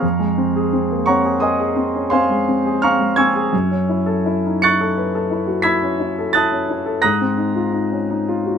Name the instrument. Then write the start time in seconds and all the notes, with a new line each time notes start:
grand piano
Already playing: F5 A#5 C#6 F6
0.02 F2
0.19 G#3
0.38 C4
0.56 G#4
0.73 C4
0.91 A#3
1.06 C4 C#5 F#5 A#5 C#6
1.25 G#4
1.40 A#4 D#5 G#5 C6 D#6
1.60 G#4
1.76 C4
1.95 C#4
2.10 C4 C5 F5 G#5 C6
2.30 G#3
2.48 C4
2.66 G#4
2.82 C4 F5 A#5 C#6 F6
3.01 G#3
3.16 C4 G#5 C#6 E6 G#6
3.35 G#4
3.53 F#2
3.71 C#4
3.89 E4
4.06 A4
4.26 E4
4.46 D#4
4.62 E4 C#6 F#6 A6 C#7
4.81 A4
4.98 B4
5.15 A4
5.31 E4
5.47 F#4
5.62 E4 B5 E6 G#6 B6
5.83 C#4
6.00 E4
6.19 A4
6.33 E4 A5 D#6 F#6 A6
6.52 C#4
6.70 E4
6.86 A4
7.02 G#2 A#5 D#6 F#6 A#6
7.21 C4
7.37 D#4
7.56 F4
7.72 D#4
7.92 C#4
8.10 D#4
8.28 F4
8.46 F#4